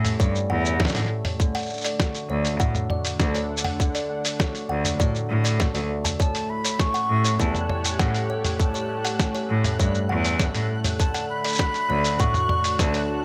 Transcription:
Already playing: A2 E3 G3 A3 C#4 G4 A4 C#5
0.05 mid tom, open hi-hat, shaker
0.20 G2 G3 C#5, kick, shaker
0.35 shaker
0.49 E2 C#4 F#5
0.65 shaker
0.80 A4 C#5, kick, snare
0.85 snare, shaker
0.90 snare
0.95 A2, snare, open hi-hat, shaker
1.00 snare
1.05 snare
1.10 A3
1.25 C#5, mid tom, open hi-hat
1.40 D3, kick, shaker
1.55 F#5, open hi-hat, shaker
1.59 shaker
1.62 shaker
1.66 A3, shaker
1.70 shaker
1.74 shaker
1.77 shaker
1.81 open hi-hat, shaker
1.85 D5, shaker
2.00 F#4, kick, snare, shaker
2.15 open hi-hat, shaker
2.30 D2 A4 C#5
2.45 open hi-hat, shaker
2.50 F#5
2.59 A2 F#3 F#5, kick, shaker
2.66 D4
2.75 mid tom, shaker
2.90 F#4 D5, mid tom
3.05 open hi-hat, shaker
3.20 D2 A4, kick, snare, shaker
3.35 C#5, open hi-hat, shaker
3.50 A3
3.57 shaker
3.64 F#5, mid tom, open hi-hat
3.80 D3, kick, shaker
3.95 D5, open hi-hat, shaker
4.10 A3
4.25 open hi-hat, shaker
4.39 F#4 C#5, kick, snare, shaker
4.55 open hi-hat, shaker
4.69 D2 G4 F#5
4.85 A4, mid tom, open hi-hat, shaker
5.00 A2 F#3 D5, kick, shaker
5.15 shaker
5.29 A2 F#4
5.44 D5, open hi-hat, shaker
5.60 A4, kick, snare, shaker
5.74 D2 D5, open hi-hat, shaker
5.90 A3
6.05 A5, mid tom, open hi-hat, shaker
6.19 A2 C#5 A5 F#6, kick, shaker
6.35 open hi-hat, shaker
6.50 A3 B5
6.65 C#5, open hi-hat, shaker
6.79 C#4 C#6, kick, snare, shaker
6.93 G4 F#5, open hi-hat, shaker
6.97 C#5
7.10 A2 A4
7.24 C#5, open hi-hat, shaker
7.40 E2 G3 A5, kick, shaker
7.55 mid tom, shaker
7.69 C#4 C#5, mid tom
7.84 open hi-hat, shaker
7.99 A2 A4 F#5, kick, snare, shaker
8.15 open hi-hat, shaker
8.29 A3 C#5 G5
8.45 mid tom, open hi-hat, shaker
8.59 A2 A5, kick, shaker
8.74 C#5, shaker
8.90 A3
9.05 F#5, open hi-hat, shaker
9.19 C#4, kick, snare, shaker
9.35 C#5, open hi-hat, shaker
9.49 A2 A4
9.64 mid tom, open hi-hat, shaker
9.79 G2 G3 C#5, kick, shaker
9.95 shaker
10.09 E2 C#4 F#5
10.25 open hi-hat, shaker
10.39 A4 C#5, kick, snare, shaker
10.55 A2, open hi-hat, shaker
10.69 A3
10.84 C#5, mid tom, open hi-hat, shaker
11.00 D3 A5, kick, shaker
11.14 F#5, open hi-hat, shaker
11.30 A3 B5
11.44 D5, open hi-hat, shaker
11.47 shaker
11.50 shaker
11.52 shaker
11.55 shaker
11.57 snare, shaker
11.60 F#4, kick, shaker
11.74 open hi-hat, shaker
11.81 D4
11.86 D2 F#4 A4 C#5
12.04 open hi-hat, shaker
12.19 A2 F#3 F#5 C#6, kick, shaker
12.34 mid tom, shaker
12.49 F#4 D5, mid tom
12.64 open hi-hat, shaker
12.79 D2 A4 A5, kick, snare, shaker
12.94 C#5, open hi-hat, shaker
13.09 A3

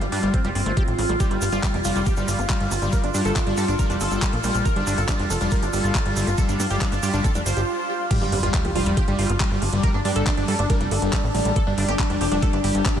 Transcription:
Already playing: F4
0.01 G1 G3 D4, closed hi-hat
0.12 G2 G3 D4, open hi-hat
0.23 G1 G3, closed hi-hat
0.34 C4 D4, kick, closed hi-hat
0.45 F1 G3, closed hi-hat
0.55 G1 C4, open hi-hat
0.66 G1 A3, closed hi-hat
0.77 G4, kick, closed hi-hat
0.88 A1, closed hi-hat
0.98 A1 G3, open hi-hat
1.09 A1 G3, closed hi-hat
1.20 G3 G4, kick, closed hi-hat, shaker
1.31 G1 G3, closed hi-hat
1.42 G1 G3 D4, open hi-hat, shaker
1.52 G1 G3 F4, shaker
1.63 G3, kick, clap, closed hi-hat, shaker
1.74 F1 G3 D4, closed hi-hat
1.85 F1 G3 F4, open hi-hat, shaker
1.96 F1 G3, closed hi-hat, shaker
2.06 D4 G4, kick, closed hi-hat, shaker
2.17 G1 G3, closed hi-hat, shaker
2.28 G1 F4, open hi-hat, shaker
2.39 G1 D4, closed hi-hat, shaker
2.49 G3, kick, clap, closed hi-hat, shaker
2.60 G1, closed hi-hat
2.71 G1 D4, open hi-hat, shaker
2.82 G1 G3, closed hi-hat, shaker
2.92 A#4, kick, closed hi-hat, shaker
3.04 G1 D4, closed hi-hat
3.14 G2 G3 D4, open hi-hat, shaker
3.25 G1 A4, closed hi-hat, shaker
3.36 D4, kick, clap, closed hi-hat, shaker
3.47 G1 G3 D4, closed hi-hat
3.57 G2 A4, open hi-hat, shaker
3.68 G1 D4, closed hi-hat, shaker
3.79 G3 A#4, kick, closed hi-hat, shaker
3.90 F1 D4, closed hi-hat, shaker
4.00 G1 D4 A4, open hi-hat, shaker
4.11 G1 G3, closed hi-hat, shaker
4.22 kick, clap, closed hi-hat, shaker
4.33 A#1 D4, closed hi-hat
4.44 A#1 G3, open hi-hat, shaker
4.54 A#1, closed hi-hat, shaker
4.65 D4 A#4, kick, closed hi-hat, shaker
4.76 G1 G3 D4, closed hi-hat
4.87 G1 D4, open hi-hat, shaker
4.97 G1 D4 A4, closed hi-hat, shaker
5.09 G3 D4, kick, clap, closed hi-hat, shaker
5.19 F1 D4, closed hi-hat
5.30 F1 D4 A4, open hi-hat, shaker
5.41 F1 G3 D4, closed hi-hat, shaker
5.51 A#4, kick, closed hi-hat, shaker
5.62 G1 D4, closed hi-hat, shaker
5.73 G1 G3 A4, open hi-hat, shaker
5.84 G1, closed hi-hat, shaker
5.95 D4, kick, clap, closed hi-hat, shaker
6.06 G1 G3, closed hi-hat
6.16 G1, open hi-hat, shaker
6.27 G1 D4, closed hi-hat, shaker
6.38 G3 A4, kick, closed hi-hat, shaker
6.49 G1 D4, closed hi-hat, shaker
6.60 G2 D4, open hi-hat, shaker
6.70 G1 G3 G4, closed hi-hat, shaker
6.80 D4, kick, clap, closed hi-hat, shaker
6.92 G1 D4, closed hi-hat, shaker
7.03 G2 G3 G4, open hi-hat, shaker
7.14 G1 D4, closed hi-hat, shaker
7.24 D4 A4, kick, closed hi-hat, shaker
7.35 F1 G3 D4, closed hi-hat, shaker
7.46 G1 C5, open hi-hat, shaker
7.57 G1 G4, closed hi-hat, shaker
8.11 G3 D4 G4, kick, closed hi-hat, crash, sub drop
8.21 G1 G3
8.32 G1 G3 D4, open hi-hat
8.43 G1 G3 F4, closed hi-hat
8.54 G3, kick, clap, closed hi-hat
8.65 F1 G3 D4, closed hi-hat
8.75 F1 G3 F4, open hi-hat
8.86 F1 G3, closed hi-hat
8.97 D4 G4, kick, closed hi-hat
9.08 G1 G3, closed hi-hat
9.19 G1 F4, open hi-hat
9.29 G1 D4, closed hi-hat
9.40 G3, kick, clap, closed hi-hat
9.51 G1
9.62 G1 D4, open hi-hat
9.73 G1 G3, closed hi-hat
9.83 A#4, kick, closed hi-hat
9.94 G1 D4
10.05 G2 G3 D4, open hi-hat
10.16 G1 A4, closed hi-hat
10.27 D4, kick, clap, closed hi-hat
10.37 G1 G3 D4, closed hi-hat
10.48 G2 A4, open hi-hat
10.59 G1 D4, closed hi-hat
10.70 G3 A#4, kick, closed hi-hat
10.81 F1 D4, closed hi-hat
10.91 G1 D4 A4, open hi-hat
11.02 G1 G3, closed hi-hat
11.13 kick, clap, closed hi-hat
11.24 A1 D4
11.35 A1 G3, open hi-hat
11.45 A1, closed hi-hat
11.56 D4 A4, kick, closed hi-hat
11.67 G1 G3 D4
11.78 G1 D4, open hi-hat
11.88 G1 D4 G4, closed hi-hat
11.99 G3 D4, kick, clap, closed hi-hat
12.10 F1 D4, closed hi-hat
12.21 F1 D4 G4, open hi-hat
12.32 F1 G3 D4, closed hi-hat
12.42 A4, kick, closed hi-hat
12.53 G1 D4, closed hi-hat
12.64 G1 G3 G4, open hi-hat
12.75 G1, closed hi-hat
12.86 D4, kick, clap, closed hi-hat
12.96 G1 G3

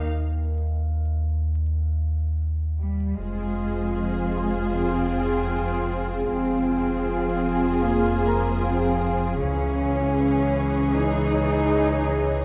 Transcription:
Already playing: F5 F6
0.05 D#2
2.80 G3
3.17 F1 F2 G#3 F4 G#4 C5 F5 G#5
4.37 C6
4.75 C4
6.29 F1 F2 C4 F4 G#4 C5 F5 G#5
7.86 A#3
8.27 A#4 A#5
8.64 C4
9.42 C#2 E3 C#4 G#4 C#5 G#5
10.98 D#4

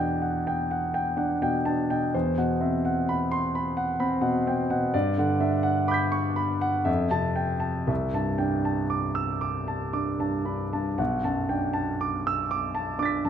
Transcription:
Already playing: E2 B2 D4 D5 F#5 G5
0.22 F#5
0.47 G5
0.71 F#5
0.94 G5
1.17 D4 F#5
1.42 B2 G5
1.65 D4 A5
1.90 B2 G5
2.14 E2 C5
2.38 B2 F#5
2.61 C4 E5
2.85 F#5
3.09 B5
3.31 C6
3.55 B5
3.77 F#5
4.00 C4 B5
4.21 B2 F#5
4.47 C4 G5
4.70 B2 F#5
4.94 G2 D5
5.18 D3 F#5
5.40 D4 E5
5.63 F#5
5.88 B5 D6 G6
5.94 B6
6.12 C#6
6.36 B5
6.61 F#5
6.85 F2 E5
7.11 C3 A5
7.36 G5
7.60 A5
7.87 C2 E5
8.13 G2 A5
8.38 D4 G5
8.65 A5
8.90 D6
9.15 E6
9.41 D6
9.68 A5
9.93 D4 D6
10.19 G2 A5
10.45 D4 B5
10.73 G2 A5
10.98 B1 F#5
11.24 F#2 A5
11.49 D4 G5
11.73 A5
12.01 D6
12.27 E6
12.51 D6
12.75 A5
12.99 D4 D6 A6
13.05 B6
13.24 F#2 A5

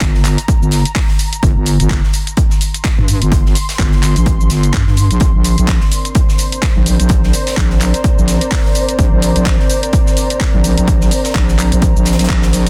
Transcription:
Already playing: A#5
0.01 G1, kick, snare, clap, closed hi-hat, cabasa
0.14 snare
0.24 clap, closed hi-hat, open hi-hat, cabasa
0.38 closed hi-hat, cabasa
0.48 kick, closed hi-hat, cabasa
0.62 G1, cabasa
0.71 snare, closed hi-hat, open hi-hat, cabasa
0.85 closed hi-hat, cabasa
0.95 kick, snare, clap, closed hi-hat, open hi-hat, cabasa
1.08 snare
1.19 closed hi-hat, open hi-hat, cabasa
1.33 closed hi-hat, cabasa
1.43 G1, kick, closed hi-hat, cabasa
1.56 G1
1.66 closed hi-hat, open hi-hat, cabasa
1.80 G1, closed hi-hat, cabasa
1.90 kick, snare, clap, closed hi-hat, cabasa
1.99 C6
2.04 snare
2.13 closed hi-hat, open hi-hat, cabasa
2.27 closed hi-hat, cabasa
2.37 kick, closed hi-hat, cabasa
2.50 snare, cabasa
2.61 closed hi-hat, open hi-hat, cabasa
2.74 closed hi-hat, cabasa
2.84 kick, snare, clap, closed hi-hat, cabasa
2.98 G2
3.08 closed hi-hat, open hi-hat, cabasa
3.22 G1, closed hi-hat, cabasa
3.32 kick, closed hi-hat, cabasa
3.46 snare
3.55 closed hi-hat, open hi-hat, cabasa
3.69 snare, open hi-hat, cabasa
3.78 G1, kick, snare, clap, closed hi-hat, cabasa
3.92 snare
4.03 clap, closed hi-hat, open hi-hat, cabasa
4.16 A1, closed hi-hat, cabasa
4.26 kick, closed hi-hat, cabasa
4.41 cabasa
4.50 G1, snare, closed hi-hat, open hi-hat, cabasa
4.63 closed hi-hat, cabasa
4.73 G2, kick, snare, clap, closed hi-hat, cabasa
4.87 G2, snare
4.97 closed hi-hat, open hi-hat, cabasa
5.11 A#1, closed hi-hat, cabasa
5.20 A#1 C4 A#4 D5, kick, closed hi-hat, cabasa
5.34 A#1
5.44 C5, closed hi-hat, open hi-hat, cabasa
5.58 A#1, closed hi-hat, cabasa
5.68 A#5, kick, snare, clap, closed hi-hat, cabasa
5.81 snare
5.91 closed hi-hat, open hi-hat, cabasa
6.05 closed hi-hat, cabasa
6.15 kick, closed hi-hat, cabasa
6.29 snare, cabasa
6.38 closed hi-hat, open hi-hat, cabasa
6.52 closed hi-hat, cabasa
6.62 kick, snare, clap, closed hi-hat, cabasa
6.76 A#1
6.86 closed hi-hat, open hi-hat, cabasa
7.00 A#1, closed hi-hat, cabasa
7.09 kick, closed hi-hat, cabasa
7.23 snare
7.33 closed hi-hat, open hi-hat, cabasa
7.47 snare, open hi-hat, cabasa
7.57 A#1, kick, snare, clap, closed hi-hat, cabasa
7.70 snare
7.81 clap, closed hi-hat, open hi-hat, cabasa
7.94 closed hi-hat, cabasa
8.04 kick, closed hi-hat, cabasa
8.18 A#1, cabasa
8.28 snare, closed hi-hat, open hi-hat, cabasa
8.41 closed hi-hat, cabasa
8.51 kick, snare, clap, closed hi-hat, open hi-hat, cabasa
8.66 snare
8.75 closed hi-hat, open hi-hat, cabasa
8.89 closed hi-hat, cabasa
8.99 A#1, kick, closed hi-hat, cabasa
9.12 A#1
9.22 closed hi-hat, open hi-hat, cabasa
9.36 A#1, closed hi-hat, cabasa
9.46 kick, snare, clap, closed hi-hat, cabasa
9.60 snare
9.70 closed hi-hat, open hi-hat, cabasa
9.83 closed hi-hat, cabasa
9.93 kick, closed hi-hat, cabasa
10.06 snare, cabasa
10.17 closed hi-hat, open hi-hat, cabasa
10.30 closed hi-hat, cabasa
10.40 kick, snare, clap, closed hi-hat, cabasa
10.54 A#1
10.64 closed hi-hat, open hi-hat, cabasa
10.78 A#1, closed hi-hat, cabasa
10.88 kick, closed hi-hat, cabasa
11.01 snare, cabasa
11.11 closed hi-hat, open hi-hat, cabasa
11.24 snare, open hi-hat, cabasa
11.35 A#1, kick, snare, clap, closed hi-hat, cabasa
11.49 snare, cabasa
11.59 clap, closed hi-hat, open hi-hat, cabasa
11.72 A#1, closed hi-hat, cabasa
11.82 kick, closed hi-hat, cabasa
11.96 A#1, cabasa
12.05 snare, closed hi-hat, open hi-hat, cabasa
12.13 snare, closed hi-hat
12.19 snare, closed hi-hat, cabasa
12.24 snare, closed hi-hat
12.29 A#1, kick, clap, closed hi-hat, cabasa
12.42 snare, closed hi-hat, cabasa
12.53 snare, open hi-hat, cabasa

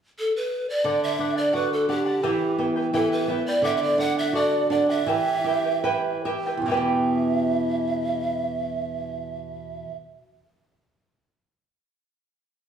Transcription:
0.19 A4
0.36 B4
0.70 D5
0.84 D3 A4 D5 F#5
1.04 E5
1.19 D4 A4 D5 F#5
1.36 D5 F#5
1.53 F#4 A4 B4 D5 F#5
1.73 A4
1.88 D4 G4 A4 D5 F#5
2.06 D5 F#5
2.23 E3 E4 G4 B4 E5 G5
2.58 B3 E4 B4 E5 G5
2.76 E4 B4 G5
2.93 E3 E4 G4 A4 B4 E5 G5
3.12 B4
3.28 B3 E4 B4 E5 G5
3.46 E4 B4 D5 G5
3.62 D3 A4 D5 E5 F#5
3.77 E5
3.82 D5
3.98 D4 A4 D5 F#5
4.17 D5 E5 F#5
4.33 F#4 A4 D5 F#5
4.70 D4 A4 D5 F#5
4.89 D5 E5 F#5
5.06 E3 E4 G4 B4 E5 G5
5.44 E4 G4 B4 E5 G5
5.65 E4 B4 G5
5.84 E4 G4 B4 E5 G5
6.25 E4 G4 B4 E5 G5
6.47 E4 B4 G5
6.57 E2
6.62 B2 E3
6.66 B3 E4 G4 E5
6.71 G4 B4 G5
6.77 B4

